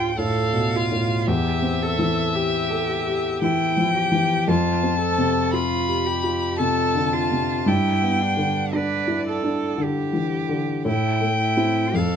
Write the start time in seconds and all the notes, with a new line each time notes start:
Already playing: D2 A2 D4 F4 G4 G5
0.18 A2 A4 F5
0.54 B2
0.76 F4
0.92 A2
1.26 E2 G4 E5
1.62 C4
1.82 A4
1.99 E3
2.35 G4
2.71 A4
3.06 G4
3.41 E3 E4 G5
3.77 F3
3.96 G4
4.12 E3
4.47 F2 F4 A5
4.83 C4
5.01 A4
5.18 C3
5.53 F4 B5
5.88 G4
6.06 G4
6.24 F4
6.58 C3 A4 A5
6.95 D3
7.13 F4
7.32 C3
7.66 G2 E4 G5
8.02 B3
8.22 D4
8.37 D3
8.73 D4 B4 D5
9.08 E4
9.29 A4
9.44 D4
9.78 D3
9.83 G4
10.13 E3
10.49 D3
10.85 A2 E4 G5
11.21 A3
11.42 E4
11.57 C4 E4
11.94 F2 A4 F5